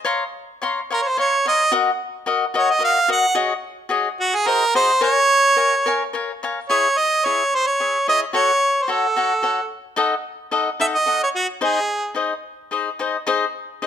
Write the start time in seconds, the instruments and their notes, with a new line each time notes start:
0.05 cavaquinho C#5 F5 A#5 C6
0.62 cavaquinho C#5 F5 A#5 C6
0.90 harmonica A#4, cavaquinho C#5 F5 A#5 C6
1.02 harmonica C#5
1.08 harmonica C5
1.17 cavaquinho C#5 F5 A#5 C6, harmonica C#5
1.46 cavaquinho C#5 F5 A#5 C6, harmonica D#5
1.72 cavaquinho F#4 A#4 D#5 F#5
2.26 cavaquinho F#4 A#4 D#5 F#5
2.54 cavaquinho F#4 A#4 D#5 F#5, harmonica C#5
2.70 harmonica D#5
2.79 cavaquinho F#4 A#4 D#5 F#5
2.84 harmonica F5
3.08 cavaquinho F#4 A#4 D#5 F#5, harmonica F#5
3.35 cavaquinho F#4 G#4 C#5 D#5
3.89 cavaquinho F#4 G#4 C#5 D#5
4.20 harmonica F#4
4.35 harmonica G#4
4.46 cavaquinho F#4 G#4 C5 D#5, harmonica A#4
4.74 cavaquinho F#4 G#4 C5 D#5, harmonica C5
5.01 cavaquinho A#4 C#5 F5 G#5, harmonica C#5
5.56 cavaquinho A#4 C#5 F5 G#5
5.86 cavaquinho A#4 C#5 F5 G#5
6.13 cavaquinho A#4 C#5 F5 G#5
6.43 cavaquinho A#4 C#5 F5 G#5
6.69 cavaquinho E4 G#4 C#5 E5, harmonica C#5
6.97 harmonica D#5
7.25 cavaquinho E4 G#4 C#5 E5, harmonica C#5
7.55 harmonica C5
7.67 harmonica C#5
7.80 cavaquinho E4 G#4 C#5 E5
8.08 cavaquinho E4 G#4 C#5 E5, harmonica D#5
8.33 cavaquinho F#4 A4 C#5 F#5, harmonica C#5
8.82 harmonica C5
8.88 cavaquinho F#4 A4 C#5 F#5, harmonica A4
9.16 cavaquinho F#4 A4 C#5 F#5
9.42 cavaquinho F#4 A4 C#5 F#5
9.96 cavaquinho D#4 A4 D#5 F#5
10.51 cavaquinho D#4 A4 D#5 F#5
10.80 cavaquinho D#4 A4 D#5 F#5, harmonica E5
10.95 harmonica D#5
11.06 cavaquinho D#4 A4 D#5 F#5
11.24 harmonica C#5
11.35 harmonica F#4
11.61 cavaquinho D#4 G#4 C5 D#5, harmonica G#4
12.14 cavaquinho D#4 G#4 C5 D#5
12.71 cavaquinho D#4 G#4 C5 D#5
12.99 cavaquinho D#4 G#4 C5 D#5
13.27 cavaquinho D#4 G#4 C5 D#5
13.82 cavaquinho D#4 G#4 C5 D#5